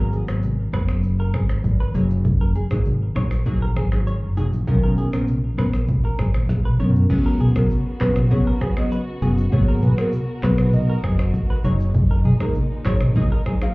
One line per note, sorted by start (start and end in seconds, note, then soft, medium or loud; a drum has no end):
0.00 0.21 G#1 loud
0.00 0.25 F#3 medium
0.00 0.25 A#3 medium
0.00 0.25 B3 medium
0.00 0.25 G#4 loud
0.00 0.13 A#4 medium
0.13 0.23 G#4 medium
0.13 high conga medium
0.13 shaker soft
0.28 0.66 G#1 medium
0.28 0.43 F#3 medium
0.28 0.43 A#3 medium
0.28 0.43 B3 medium
0.28 0.43 G#4 medium
0.28 finger snap medium
0.28 cross-stick medium
0.28 shaker medium
0.43 low conga medium
0.43 shaker medium
0.73 1.34 F#1 medium
0.73 0.89 F#3 medium
0.73 0.89 A#3 medium
0.73 0.89 B3 medium
0.73 0.89 G#4 medium
0.73 0.83 B4 medium
0.73 finger snap medium
0.73 kick medium
0.73 cross-stick medium
0.73 high conga medium
0.73 shaker medium
0.89 finger snap medium
0.89 cross-stick medium
0.89 shaker medium
1.03 shaker medium
1.20 1.34 A#4 medium
1.34 1.59 G#1 loud
1.34 1.44 G#4 medium
1.34 finger snap medium
1.34 kick loud
1.34 cross-stick medium
1.34 high conga medium
1.34 shaker soft
1.49 finger snap medium
1.49 cross-stick medium
1.49 shaker medium
1.64 1.90 G#1 loud
1.64 kick medium
1.64 high conga medium
1.64 shaker medium
1.80 1.95 B4 medium
1.94 2.59 F#1 medium
1.94 2.23 F#3 medium
1.94 2.23 A#3 medium
1.94 2.23 D#4 medium
1.94 2.23 G#4 medium
1.94 2.04 C#5 medium
1.94 high conga medium
1.94 low conga medium
1.94 shaker medium
2.11 shaker medium
2.25 kick loud
2.25 low conga medium
2.25 shaker medium
2.41 2.50 A#4 medium
2.55 2.65 G#4 medium
2.55 high conga medium
2.55 shaker soft
2.71 3.09 G#1 medium
2.71 2.85 F#3 medium
2.71 2.85 A#3 medium
2.71 2.85 D#4 medium
2.71 2.85 G#4 medium
2.71 finger snap medium
2.71 kick medium
2.71 cross-stick medium
2.71 shaker medium
2.85 low conga medium
2.85 shaker medium
3.16 3.76 A#1 medium
3.16 3.31 F#3 medium
3.16 3.31 A#3 medium
3.16 3.31 D#4 medium
3.16 3.31 G#4 medium
3.16 3.26 C#5 medium
3.16 finger snap medium
3.16 kick medium
3.16 cross-stick medium
3.16 high conga medium
3.16 shaker medium
3.31 finger snap medium
3.31 cross-stick medium
3.31 shaker medium
3.46 3.61 F#3 medium
3.46 3.61 A#3 medium
3.46 3.61 D#4 medium
3.46 3.62 G#4 loud
3.46 kick loud
3.46 shaker medium
3.62 3.71 A#4 medium
3.76 4.23 G#1 medium
3.76 3.86 G#4 medium
3.76 finger snap medium
3.76 kick medium
3.76 cross-stick loud
3.76 high conga medium
3.76 shaker soft
3.92 4.06 F#3 medium
3.92 4.06 A#3 medium
3.92 4.06 D#4 medium
3.92 4.07 G#4 medium
3.92 finger snap medium
3.92 cross-stick medium
3.92 shaker medium
4.07 4.17 C#5 medium
4.07 high conga soft
4.07 shaker medium
4.23 4.48 F#1 medium
4.37 4.52 F#3 medium
4.37 4.52 A#3 medium
4.37 4.52 D#4 medium
4.37 4.47 G#4 medium
4.37 4.53 G#4 medium
4.37 high conga medium
4.37 low conga medium
4.37 shaker medium
4.53 4.65 A#1 medium
4.53 shaker medium
4.67 5.06 B1 loud
4.67 5.10 D#3 medium
4.67 5.10 B3 medium
4.67 5.10 C#4 medium
4.67 5.10 A#4 loud
4.67 kick loud
4.67 low conga medium
4.67 shaker medium
4.83 4.92 A#4 medium
4.98 5.08 G#4 medium
4.98 high conga medium
4.98 shaker soft
5.13 5.51 A#1 medium
5.13 5.27 D#3 medium
5.13 5.27 B3 medium
5.13 5.28 C#4 medium
5.13 5.28 A#4 medium
5.13 finger snap medium
5.13 cross-stick medium
5.13 shaker medium
5.28 low conga medium
5.28 shaker medium
5.58 6.09 A#1 medium
5.58 5.73 D#3 medium
5.58 5.73 B3 medium
5.58 5.74 C#4 medium
5.58 5.74 A#4 medium
5.58 5.68 B4 medium
5.58 finger snap medium
5.58 kick medium
5.58 cross-stick medium
5.58 high conga medium
5.58 shaker medium
5.73 finger snap medium
5.73 cross-stick medium
5.73 shaker medium
5.88 kick loud
5.88 low conga medium
5.88 shaker medium
6.05 6.19 A#4 medium
6.19 6.32 G#1 medium
6.19 6.29 G#4 medium
6.19 finger snap medium
6.19 kick loud
6.19 cross-stick loud
6.19 high conga medium
6.19 shaker soft
6.34 6.47 A#1 medium
6.34 finger snap medium
6.34 cross-stick medium
6.34 shaker medium
6.49 6.75 A#1 medium
6.49 kick medium
6.49 snare medium
6.49 high conga medium
6.49 shaker medium
6.65 6.74 B4 medium
6.69 mid tom medium
6.79 7.05 B1 medium
6.79 7.07 D#3 medium
6.79 7.07 B3 medium
6.79 7.08 C#4 medium
6.79 7.08 A#4 medium
6.79 6.89 C#5 medium
6.79 high conga medium
6.79 low conga medium
6.79 shaker medium
6.90 floor tom loud
6.96 shaker medium
7.09 7.49 C#2 loud
7.09 9.50 C#3 medium
7.09 7.52 F#3 medium
7.09 7.52 B3 medium
7.09 9.50 B3 medium
7.09 7.52 C#4 medium
7.09 11.60 F#4 medium
7.09 7.52 G#4 loud
7.09 kick loud
7.09 crash loud
7.09 low conga medium
7.09 shaker medium
7.26 7.35 A#4 medium
7.40 7.50 G#4 medium
7.40 mid tom loud
7.40 high conga loud
7.40 shaker medium
7.56 7.68 B1 medium
7.56 7.70 F#3 medium
7.56 7.70 B3 medium
7.56 7.70 C#4 medium
7.56 7.70 G#4 medium
7.56 7.69 A#4 medium
7.56 finger snap medium
7.56 kick medium
7.56 cross-stick medium
7.56 shaker medium
7.70 low conga medium
7.70 shaker medium
8.00 8.39 A#1 loud
8.00 8.16 F#3 medium
8.00 8.16 B3 medium
8.00 8.16 C#4 medium
8.00 8.16 G#4 medium
8.00 8.11 B4 medium
8.00 8.14 B4 medium
8.00 finger snap medium
8.00 kick medium
8.00 cross-stick loud
8.00 clap loud
8.00 high conga medium
8.00 shaker medium
8.16 finger snap medium
8.16 cross-stick loud
8.16 mid tom medium
8.16 shaker medium
8.30 8.46 F#3 loud
8.30 8.46 B3 medium
8.30 8.46 C#4 medium
8.30 8.46 G#4 loud
8.30 8.45 C#5 medium
8.30 kick loud
8.30 low conga medium
8.30 shaker medium
8.47 8.56 A#4 medium
8.61 8.71 G#4 medium
8.61 finger snap medium
8.61 kick medium
8.61 cross-stick loud
8.61 high conga medium
8.61 shaker soft
8.77 8.91 F#3 medium
8.77 8.91 B3 medium
8.77 8.91 C#4 medium
8.77 8.91 G#4 medium
8.77 8.90 D#5 medium
8.77 finger snap medium
8.77 cross-stick loud
8.77 shaker medium
8.91 9.02 B4 medium
8.91 high conga medium
8.91 shaker medium
9.22 9.47 F#1 medium
9.22 9.37 F#3 medium
9.22 9.37 B3 medium
9.22 9.37 C#4 medium
9.22 9.32 G#4 medium
9.22 9.37 G#4 medium
9.22 high conga medium
9.22 low conga medium
9.22 shaker medium
9.38 shaker medium
9.52 9.91 G#1 loud
9.52 11.62 B2 medium
9.52 9.94 F#3 medium
9.52 9.95 A#3 medium
9.52 9.95 B3 medium
9.52 9.95 G#4 loud
9.52 11.62 A#4 medium
9.52 9.66 C#5 loud
9.52 kick loud
9.52 low conga medium
9.52 shaker medium
9.68 9.83 A#4 medium
9.82 9.92 G#4 medium
9.82 9.96 B4 medium
9.82 mid tom medium
9.82 high conga medium
9.82 shaker medium
9.98 10.12 F#3 medium
9.98 10.12 A#3 medium
9.98 10.12 B3 medium
9.98 10.13 G#4 medium
9.98 10.11 A#4 medium
9.98 finger snap medium
9.98 cross-stick loud
9.98 shaker medium
10.12 low conga medium
10.12 shaker medium
10.43 10.94 B1 medium
10.43 10.58 F#3 medium
10.43 10.58 A#3 medium
10.43 10.58 B3 medium
10.43 10.58 G#4 medium
10.43 10.53 B4 medium
10.43 10.57 B4 medium
10.43 finger snap medium
10.43 kick medium
10.43 cross-stick loud
10.43 clap medium
10.43 high conga medium
10.43 shaker medium
10.58 10.72 B4 medium
10.58 finger snap medium
10.58 cross-stick loud
10.58 mid tom medium
10.58 shaker medium
10.73 11.17 D#5 loud
10.73 low conga medium
10.73 shaker medium
10.90 10.98 A#4 medium
11.04 11.29 F#1 medium
11.04 11.14 G#4 medium
11.04 finger snap medium
11.04 kick loud
11.04 cross-stick loud
11.04 high conga medium
11.04 shaker soft
11.19 finger snap medium
11.19 cross-stick loud
11.19 shaker medium
11.34 kick medium
11.34 high conga medium
11.34 shaker medium
11.50 11.59 B4 medium
11.64 12.28 F#1 loud
11.64 13.74 A#2 medium
11.64 11.92 F#3 medium
11.64 13.74 G#3 medium
11.64 11.92 A#3 medium
11.64 11.92 D#4 medium
11.64 13.74 D#4 medium
11.64 11.92 G#4 medium
11.64 11.74 C#5 medium
11.64 11.78 C#5 medium
11.64 high conga medium
11.64 low conga medium
11.64 shaker medium
11.80 shaker medium
11.94 kick loud
11.94 low conga medium
11.94 shaker medium
12.11 12.20 A#4 medium
12.25 12.35 G#4 medium
12.25 mid tom loud
12.25 high conga loud
12.25 shaker medium
12.40 12.53 A#1 medium
12.40 12.55 F#3 medium
12.40 12.55 A#3 medium
12.40 12.55 D#4 medium
12.40 12.55 G#4 medium
12.40 12.53 A#4 medium
12.40 finger snap medium
12.40 kick medium
12.40 cross-stick medium
12.40 shaker medium
12.55 low conga medium
12.55 shaker medium
12.85 13.24 G#1 loud
12.85 13.01 F#3 medium
12.85 13.01 A#3 medium
12.85 13.01 D#4 medium
12.85 13.01 G#4 medium
12.85 12.95 C#5 medium
12.85 12.99 C#5 medium
12.85 finger snap medium
12.85 kick medium
12.85 cross-stick loud
12.85 clap medium
12.85 high conga medium
12.85 shaker medium
13.01 finger snap medium
13.01 cross-stick medium
13.01 mid tom medium
13.01 shaker medium
13.15 13.31 F#3 loud
13.15 13.31 A#3 medium
13.15 13.31 D#4 medium
13.15 13.31 G#4 loud
13.15 13.29 D#5 medium
13.15 kick loud
13.15 low conga medium
13.15 shaker medium
13.32 13.41 A#4 medium
13.46 13.56 G#4 medium
13.46 finger snap medium
13.46 kick loud
13.46 cross-stick loud
13.46 high conga medium
13.46 shaker soft
13.61 13.74 F#3 medium
13.61 13.74 A#3 medium
13.61 13.74 D#4 medium
13.61 13.74 G#4 medium
13.61 13.74 F5 medium
13.61 finger snap medium
13.61 cross-stick loud
13.61 shaker medium